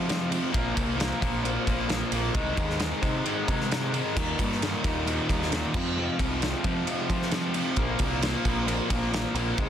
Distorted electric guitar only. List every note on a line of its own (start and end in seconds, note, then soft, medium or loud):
0.08 0.29 F2 medium
0.08 0.29 C3 loud
0.08 0.30 F3 loud
0.30 0.52 F2 medium
0.30 0.52 C3 loud
0.30 0.51 F3 loud
0.52 0.74 A#2 loud
0.52 0.74 F3 loud
0.52 0.75 A#3 loud
0.75 0.96 A#2 medium
0.75 0.97 F3 medium
0.75 0.97 A#3 medium
0.97 1.19 A#2 loud
0.97 1.20 F3 loud
0.97 1.20 A#3 loud
1.20 1.42 A#2 loud
1.20 1.43 F3 medium
1.20 1.43 A#3 loud
1.43 1.65 A#2 loud
1.43 1.66 F3 loud
1.43 1.66 A#3 loud
1.67 1.88 A#2 medium
1.67 1.88 F3 loud
1.67 1.89 A#3 medium
1.89 2.11 A#2 medium
1.89 2.11 F3 medium
1.89 2.12 A#3 loud
2.12 2.34 A#2 medium
2.12 2.34 F3 loud
2.12 2.34 A#3 medium
2.34 2.56 G#2 medium
2.34 2.56 D#3 loud
2.34 2.56 G#3 loud
2.57 2.79 G#2 medium
2.57 2.79 D#3 medium
2.57 2.79 G#3 medium
2.80 3.01 G#2 loud
2.80 3.01 D#3 medium
2.80 3.02 G#3 loud
3.02 3.24 G#2 medium
3.02 3.24 D#3 medium
3.02 3.25 G#3 medium
3.25 3.46 G#2 medium
3.25 3.47 D#3 loud
3.25 3.47 G#3 loud
3.47 3.69 G#2 medium
3.47 3.70 D#3 medium
3.47 3.70 G#3 medium
3.70 3.92 G#2 medium
3.70 3.93 D#3 loud
3.70 3.93 G#3 loud
3.93 4.14 G#2 medium
3.93 4.15 D#3 loud
3.93 4.15 G#3 loud
4.17 4.38 D#2 loud
4.17 4.39 A#2 medium
4.17 4.40 D#3 loud
4.40 4.62 D#2 medium
4.40 4.61 A#2 medium
4.40 4.62 D#3 medium
4.62 4.83 D#2 medium
4.62 4.84 A#2 loud
4.62 4.84 D#3 loud
4.84 5.05 D#2 medium
4.84 5.05 A#2 loud
4.84 5.05 D#3 loud
5.07 5.28 D#2 loud
5.07 5.29 A#2 loud
5.07 5.29 D#3 loud
5.30 5.51 D#2 medium
5.30 5.52 A#2 medium
5.30 5.52 D#3 medium
5.52 5.73 D#2 loud
5.52 5.74 A#2 loud
5.52 5.73 D#3 loud
5.75 5.96 F2 loud
5.75 5.97 C3 loud
5.75 5.97 F3 loud
5.97 6.18 F2 loud
5.97 6.19 C3 loud
5.97 6.20 F3 loud
6.19 6.41 F2 medium
6.19 6.42 C3 medium
6.19 6.43 F3 medium
6.42 6.64 F2 loud
6.42 6.64 C3 loud
6.42 6.65 F3 loud
6.65 6.85 F2 medium
6.65 6.86 C3 medium
6.65 6.86 F3 loud
6.86 7.09 F2 loud
6.86 7.09 C3 loud
6.86 7.09 F3 loud
7.10 7.31 F2 medium
7.10 7.31 C3 medium
7.10 7.32 F3 medium
7.32 7.54 F2 loud
7.32 7.54 C3 loud
7.32 7.54 F3 loud
7.55 7.76 F2 medium
7.55 7.76 C3 loud
7.55 7.76 F3 medium
7.77 7.99 A#2 medium
7.77 8.00 F3 loud
7.77 8.00 A#3 loud
8.00 8.21 A#2 medium
8.00 8.21 F3 medium
8.00 8.22 A#3 medium
8.22 8.44 A#2 loud
8.22 8.44 F3 loud
8.22 8.45 A#3 loud
8.45 8.65 A#2 medium
8.45 8.66 F3 loud
8.45 8.66 A#3 loud
8.66 8.88 A#2 loud
8.66 8.89 F3 loud
8.66 8.89 A#3 loud
8.89 9.11 A#2 loud
8.89 9.11 F3 medium
8.89 9.12 A#3 medium
9.12 9.34 A#2 loud
9.12 9.35 F3 loud
9.12 9.35 A#3 loud
9.35 9.56 A#2 medium
9.35 9.57 F3 medium
9.35 9.57 A#3 loud
9.58 9.69 G#2 medium
9.58 9.69 D#3 loud
9.58 9.69 G#3 loud